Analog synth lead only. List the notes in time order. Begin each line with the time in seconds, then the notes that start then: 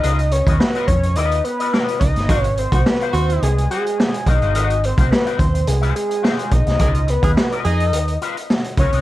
Already playing: D#5
0.32 C#5
0.59 B4
0.87 C#5
1.16 D#5
1.44 B4
2.00 D#5
2.41 C#5
2.58 C5
2.86 B4
3.14 C5
3.43 G#4
3.71 G#4
4.27 D#5
4.85 C5
5.11 B4
5.38 C5
5.68 G#4
5.96 G#4
6.52 D#5
7.10 B4
7.66 D#5
8.80 C#5